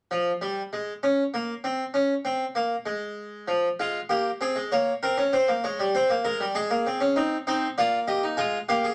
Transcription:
0.11 0.30 F3 medium
0.41 0.61 G3 medium
0.73 0.92 G#3 medium
1.03 1.22 C#4 medium
1.34 1.52 A#3 medium
1.64 1.82 C4 medium
1.94 2.13 C#4 medium
2.25 2.43 C4 medium
2.55 2.74 A#3 medium
2.86 3.46 G#3 medium
3.48 3.67 F3 medium
3.80 3.98 G#3 soft
3.80 3.98 F4 medium
4.09 4.29 A#3 medium
4.09 4.29 G4 medium
4.41 4.56 C4 medium
4.41 4.60 G#4 medium
4.56 4.71 G#3 medium
4.72 4.91 A#3 medium
4.72 4.91 C#5 medium
5.03 5.17 C4 medium
5.03 5.22 A#4 medium
5.18 5.32 C#4 medium
5.33 5.48 C4 medium
5.33 5.52 C5 medium
5.48 5.63 A#3 medium
5.64 5.78 G#3 medium
5.64 5.83 C#5 medium
5.79 5.94 G3 medium
5.95 6.09 C4 medium
5.95 6.13 C5 medium
6.10 6.24 A#3 medium
6.25 6.39 G#3 medium
6.25 6.43 A#4 medium
6.40 6.55 G3 medium
6.55 6.70 G#3 medium
6.55 7.14 G#4 medium
6.70 6.85 A#3 soft
6.86 7.01 C4 medium
7.00 7.15 C#4 medium
7.16 7.35 C4 medium
7.16 7.35 D#4 medium
7.47 7.66 C4 medium
7.47 7.66 D#4 medium
7.47 7.66 C5 medium
7.78 8.37 A#3 medium
7.78 7.97 F4 medium
7.78 7.96 D5 medium
8.08 8.22 G4 medium
8.08 8.26 D#5 medium
8.23 8.38 D#4 medium
8.37 8.57 G#3 medium
8.37 8.57 F4 medium
8.37 8.56 G#5 loud
8.69 8.88 A#3 medium
8.69 8.83 G4 medium
8.69 8.88 F5 medium
8.84 8.95 G#4 medium

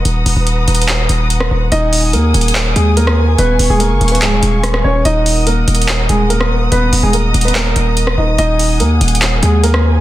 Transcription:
0.00 3.35 F#5 medium
0.05 0.25 D#1 loud
0.05 1.70 B4 medium
0.05 1.70 A#5 medium
0.05 1.70 D#6 medium
0.05 closed hi-hat medium
0.26 0.36 D#1 loud
0.26 open hi-hat medium
0.36 0.66 D#1 loud
0.47 closed hi-hat medium
0.68 1.08 D#1 loud
0.68 closed hi-hat medium
0.75 closed hi-hat medium
0.82 closed hi-hat medium
0.88 clap loud
0.88 closed hi-hat medium
1.09 1.49 D#1 loud
1.09 closed hi-hat medium
1.30 closed hi-hat medium
1.40 cross-stick medium
1.51 1.71 D#1 loud
1.72 2.15 D#1 loud
1.72 2.12 D#4 medium
1.72 5.02 G#4 medium
1.72 2.11 D#5 loud
1.72 5.02 G#5 medium
1.72 3.37 D#6 medium
1.72 closed hi-hat medium
1.93 open hi-hat medium
2.13 2.33 D#2 loud
2.13 2.73 A#3 medium
2.13 2.72 A#4 medium
2.13 closed hi-hat medium
2.34 2.74 D#1 loud
2.34 closed hi-hat medium
2.41 closed hi-hat medium
2.48 closed hi-hat medium
2.55 clap loud
2.55 closed hi-hat medium
2.76 3.36 D#2 loud
2.76 2.95 G#3 medium
2.76 2.95 G#4 medium
2.76 closed hi-hat medium
2.97 3.36 A#3 medium
2.97 3.36 A#4 medium
2.97 closed hi-hat medium
3.07 cross-stick medium
3.38 3.58 D#1 loud
3.38 3.68 B3 medium
3.38 3.68 B4 loud
3.38 5.04 F5 medium
3.38 5.03 C#6 medium
3.38 closed hi-hat medium
3.59 3.69 D#1 loud
3.59 open hi-hat medium
3.70 3.92 D#1 loud
3.70 3.80 G#3 medium
3.70 3.79 G#4 medium
3.80 4.10 A#3 medium
3.80 4.10 A#4 medium
3.80 closed hi-hat medium
3.91 4.00 F#1 loud
4.01 4.23 D#1 loud
4.01 closed hi-hat medium
4.08 4.21 B4 medium
4.08 closed hi-hat medium
4.12 4.21 B3 medium
4.12 closed hi-hat medium
4.22 4.34 C#1 medium
4.22 4.81 G#3 medium
4.22 4.81 G#4 medium
4.22 clap loud
4.22 closed hi-hat medium
4.32 4.42 D#1 loud
4.43 4.83 D#1 loud
4.43 closed hi-hat medium
4.63 cross-stick medium
4.63 closed hi-hat medium
4.74 cross-stick medium
4.84 5.04 D#1 loud
4.84 5.04 C#4 medium
4.84 5.03 C#5 medium
5.05 5.65 D#1 loud
5.05 5.45 D#4 medium
5.05 6.70 A#4 medium
5.05 6.70 D#5 medium
5.05 5.44 D#5 loud
5.05 8.35 F#5 medium
5.05 10.01 D#6 medium
5.05 closed hi-hat medium
5.26 open hi-hat medium
5.47 6.06 A#3 medium
5.47 6.06 A#4 medium
5.47 closed hi-hat medium
5.68 6.08 D#1 loud
5.68 closed hi-hat medium
5.75 closed hi-hat medium
5.82 closed hi-hat medium
5.88 clap loud
5.88 closed hi-hat medium
6.09 6.69 D#1 loud
6.09 6.29 G#3 medium
6.09 6.28 G#4 medium
6.09 closed hi-hat medium
6.30 6.70 A#3 medium
6.30 6.69 A#4 medium
6.30 closed hi-hat medium
6.41 cross-stick medium
6.72 6.92 D#1 loud
6.72 7.02 B3 medium
6.72 7.01 B4 loud
6.72 8.37 D#5 medium
6.72 8.37 A#5 medium
6.72 closed hi-hat medium
6.93 7.02 D#1 loud
6.93 open hi-hat medium
7.03 7.33 D#1 loud
7.03 7.13 G#3 medium
7.03 7.13 G#4 medium
7.13 7.43 A#3 medium
7.13 7.43 A#4 medium
7.13 closed hi-hat medium
7.34 7.74 D#1 loud
7.34 closed hi-hat medium
7.41 7.54 B4 medium
7.41 closed hi-hat medium
7.46 7.55 B3 medium
7.46 closed hi-hat medium
7.55 8.14 A#3 medium
7.55 8.14 A#4 medium
7.55 clap loud
7.55 closed hi-hat medium
7.76 8.16 D#1 loud
7.76 closed hi-hat medium
7.97 closed hi-hat medium
8.07 cross-stick medium
8.18 8.38 D#1 loud
8.18 8.37 D#4 medium
8.18 8.37 D#5 medium
8.38 8.82 D#1 loud
8.38 8.78 D#4 medium
8.38 10.01 G#4 medium
8.38 8.78 D#5 loud
8.38 10.01 F#5 medium
8.38 10.01 G#5 medium
8.38 closed hi-hat medium
8.59 open hi-hat medium
8.80 9.00 D#2 loud
8.80 9.39 A#3 medium
8.80 9.39 A#4 medium
8.80 closed hi-hat medium
9.01 9.41 D#1 loud
9.01 closed hi-hat medium
9.08 closed hi-hat medium
9.15 closed hi-hat medium
9.22 clap loud
9.22 closed hi-hat medium
9.43 10.01 D#2 loud
9.43 9.62 G#3 medium
9.43 9.62 G#4 medium
9.43 closed hi-hat medium
9.64 10.01 A#3 medium
9.64 10.01 A#4 medium
9.64 closed hi-hat medium
9.74 cross-stick medium

